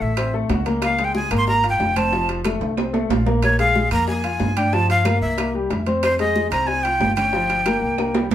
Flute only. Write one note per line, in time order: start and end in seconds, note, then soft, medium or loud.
0.02 0.34 E5 medium
0.83 1.06 F5 medium
1.04 1.15 G5 medium
1.16 1.36 G#5 medium
1.37 1.47 C6 medium
1.48 1.68 A#5 loud
1.70 1.98 G5 medium
1.97 2.29 A5 medium
3.43 3.58 C#5 medium
3.59 3.89 F5 loud
3.92 4.07 A#5 loud
4.08 4.59 G#5 loud
4.57 4.75 G5 medium
4.73 4.89 A5 loud
4.90 5.20 F5 medium
5.22 5.52 E5 medium
6.04 6.19 C5 medium
6.19 6.50 D#5 loud
6.51 6.68 A#5 loud
6.67 6.85 G#5 loud
6.83 7.15 G5 loud
7.16 8.26 G5 medium